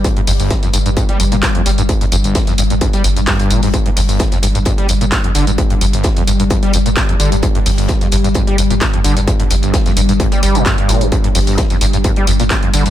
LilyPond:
<<
  \new Staff \with { instrumentName = "Ambient pad" } { \clef bass \time 4/4 \key g \minor \tempo 4 = 130 <g, g>1~ | <g, g>1 | <g, g>1~ | <g, g>1~ |
<g, g>1~ | <g, g>1~ | <g, g>1 | }
  \new Staff \with { instrumentName = "Acid bass" } { \clef bass \time 4/4 \key g \minor g,16 g,16 f,16 g,,16 bes,16 f,16 g,16 g,16 g,16 g16 f,16 bes,16 bes,16 f,16 g16 g,16 | g,16 g,16 f,16 g,,16 bes,16 f,16 g,16 g,16 g,16 g16 g,,16 g,16 g,16 g,16 bes,16 aes,16 | g,16 g,16 f,16 g,,16 bes,16 f,16 g,16 g,16 g,16 g16 f,16 bes,16 bes,16 f,16 d16 g,16 | g,16 g,16 f,16 g,,16 bes,16 f,16 g,16 g,16 g,16 g16 f,16 bes,16 bes,16 f,16 d16 g,16 |
g,16 g,16 f,16 g,,16 bes,16 f,16 g,16 g,16 g,16 g16 f,16 bes,16 bes,16 f,16 d16 g,16 | g,16 g,16 f,16 g,,16 bes,16 f,16 g,16 g,16 g,16 g16 g16 bes,16 g,16 g,16 bes,16 g,16 | g,16 g,16 f,16 g,,16 bes,16 f,16 g,16 g,16 g,16 g16 f,16 bes,16 bes,16 f,16 d16 g,16 | }
  \new Staff \with { instrumentName = "Sub bass" } { \clef bass \time 4/4 \key g \minor r8 g,,16 g,,16 r8 g,,16 g,,16 r8 g,,16 g,,16 r8 g,,16 g,,16 | r8 g,,16 g,,16 r8 g,,16 g,,16 r8 g,,16 g,,16 r8 g,,16 g,,16 | r8 g,,16 g,,16 r8 g,,16 g,,16 r8 g,,16 g,,16 r8 g,,16 g,,16 | r8 g,,16 g,,16 r8 g,,16 g,,16 r8 g,,16 g,,16 r8 g,,16 g,,16 |
r8 g,,16 g,,16 r8 g,,16 g,,16 r8 g,,16 g,,16 r8 g,,16 g,,16 | r8 g,,16 g,,16 r8 g,,16 g,,16 r8 g,,16 g,,16 r8 g,,16 g,,16 | r8 g,,16 g,,16 r8 g,,16 g,,16 r8 g,,16 g,,16 r8 g,,16 g,,16 | }
  \new DrumStaff \with { instrumentName = "Drums" } \drummode { \time 4/4 <hh bd tamb>16 hh16 <hho tamb>16 <hh tamb>16 <hh bd sn tamb>16 <hh sn tamb>16 <hh hho tamb>16 <hh tamb>16 <hh bd tamb>16 hh16 <hh hho tamb>16 <hh tamb>16 <hc hh bd sn tamb>16 hh16 <hh hho tamb>16 <hh tamb>16 | <hh bd tamb>16 <hh tamb>16 <hh hho tamb>16 <hh tamb>16 <hh bd sn tamb>16 <hh sn tamb>16 <hh hho tamb>16 <hh tamb>16 <hh bd tamb>16 <hh tamb>16 <hh hho tamb>16 <hh tamb>16 <hc hh hho bd tamb>16 <hh tamb>16 <hho tamb>16 <hh hho tamb>16 | <hh bd tamb>16 hh16 <hho tamb>16 <hh tamb>16 <hh bd sn tamb>16 <hh sn tamb>16 <hh hho tamb>16 <hh tamb>16 <hh bd tamb>16 hh16 <hh hho tamb>16 <hh tamb>16 <hc hh bd sn tamb>16 hh16 <hh hho tamb>16 <hh tamb>16 | <hh bd tamb>16 hh16 <hh hho tamb>16 <hh tamb>16 <hh bd sn tamb>16 <hh sn tamb>16 <hh hho tamb>16 <hh tamb>16 <hh bd tamb>16 hh16 <hh hho tamb>16 <hh tamb>16 <hc hh bd sn tamb>16 hh16 <hh hho tamb>16 <hh tamb>16 |
<hh bd tamb>16 hh16 <hho tamb>16 <hh tamb>16 <hh bd sn tamb>16 <hh sn tamb>16 <hh hho tamb>16 <hh tamb>16 <hh bd tamb>16 hh16 <hh hho tamb>16 <hh tamb>16 <hc hh bd sn tamb>16 hh16 <hh hho tamb>16 <hh tamb>16 | <hh bd tamb>16 hh16 <hh hho tamb>16 <hh tamb>16 <hh bd sn tamb>16 <hh sn tamb>16 <hh hho tamb>16 <hh tamb>16 <hh bd tamb>16 <hh tamb>16 <hh hho tamb>16 <hh tamb>16 <hc hh bd sn tamb>16 hh16 <hh hho sn tamb>16 <hh tamb>16 | <hh bd tamb>16 hh16 <hho tamb>16 <hh tamb>16 <hh bd sn tamb>16 <hh sn tamb>16 <hh hho tamb>16 <hh tamb>16 <hh bd tamb>16 hh16 <hh hho tamb>16 <hh tamb>16 <hc hh bd sn tamb>16 hh16 <hh hho tamb>16 <hh tamb>16 | }
>>